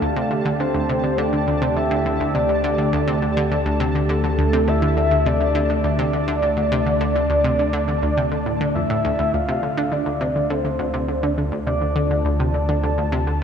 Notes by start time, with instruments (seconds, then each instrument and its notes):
Already playing: analog synth pad D3 A3 G4 D5 A5, synth texture A5
0.02 analog synth bass D2, synth arpeggio sound D2
0.16 synth arpeggio sound C3
0.31 synth arpeggio sound D3
0.45 synth arpeggio sound D3
0.60 synth arpeggio sound D3, soft synth lead C5
0.75 synth arpeggio sound D2
0.89 synth arpeggio sound C3
1.04 synth arpeggio sound D3
1.17 synth arpeggio sound D3, soft synth lead D5
1.33 synth arpeggio sound D3
1.47 synth arpeggio sound D2
1.62 synth arpeggio sound C3
1.76 synth arpeggio sound D3, soft synth lead E5
1.91 synth arpeggio sound D3
2.06 synth arpeggio sound D3
2.20 synth arpeggio sound D2
2.34 synth arpeggio sound C3, soft synth lead D5
2.49 synth arpeggio sound D3
2.64 synth arpeggio sound D3
2.78 synth arpeggio sound D3
2.93 synth arpeggio sound D2
3.08 synth arpeggio sound C3
3.22 synth arpeggio sound D3
3.37 synth arpeggio sound D3
3.51 synth arpeggio sound D3
3.66 synth arpeggio sound D2
3.80 synth arpeggio sound C3
3.95 synth arpeggio sound D3
4.09 synth arpeggio sound D3, soft synth lead A4
4.24 synth arpeggio sound D3
4.38 synth arpeggio sound D2
4.53 synth arpeggio sound C3
4.68 synth arpeggio sound D3, soft synth lead E5
4.82 synth arpeggio sound D3
4.97 synth arpeggio sound D3
5.11 synth arpeggio sound D2
5.26 synth arpeggio sound C3, soft synth lead D5
5.40 synth arpeggio sound D3
5.55 synth arpeggio sound D3
5.70 synth arpeggio sound D3
5.84 synth arpeggio sound D2, soft synth lead D5
5.99 synth arpeggio sound C3
6.13 synth arpeggio sound D3
6.28 synth arpeggio sound D3
6.42 synth arpeggio sound D3
6.57 synth arpeggio sound D2
6.72 synth arpeggio sound C3
6.86 synth arpeggio sound D3
7.01 synth arpeggio sound D3
7.15 synth arpeggio sound D3
7.30 synth arpeggio sound D2
7.44 synth arpeggio sound C3
7.59 synth arpeggio sound D3
7.73 synth arpeggio sound D3
7.88 synth arpeggio sound D3
8.02 synth arpeggio sound D2
8.17 synth arpeggio sound C3
8.32 synth arpeggio sound D3
8.46 synth arpeggio sound A2
8.61 synth arpeggio sound D3
8.75 synth arpeggio sound F2, soft synth lead E5
8.90 synth arpeggio sound A2
9.05 synth arpeggio sound D2
9.19 synth arpeggio sound D2
9.34 analog synth bass D2, synth arpeggio sound D2, analog synth pad D3, soft synth lead F5, synth texture A5
9.46 synth arpeggio sound C3, analog synth pad A3
9.63 synth arpeggio sound D3
9.78 synth arpeggio sound D3
9.92 synth arpeggio sound D3, soft synth lead D5
10.06 synth arpeggio sound D2, analog synth pad F4
10.21 synth arpeggio sound C3
10.36 synth arpeggio sound D3
10.50 synth arpeggio sound D3, soft synth lead C5
10.65 synth arpeggio sound D3, analog synth pad A5
10.79 synth arpeggio sound D2
10.86 analog synth pad D5
10.94 synth arpeggio sound C3
11.08 synth arpeggio sound D3
11.23 synth arpeggio sound D3
11.38 synth arpeggio sound D3
11.52 synth arpeggio sound D2
11.67 synth arpeggio sound C3, soft synth lead D5
11.81 synth arpeggio sound D3
11.96 synth arpeggio sound D3
12.11 synth arpeggio sound D3
12.25 synth arpeggio sound D2
12.40 synth arpeggio sound C3
12.54 synth arpeggio sound D3
12.69 synth arpeggio sound D3
12.83 synth arpeggio sound D3
12.98 synth arpeggio sound D2
13.12 synth arpeggio sound C3
13.27 synth arpeggio sound D3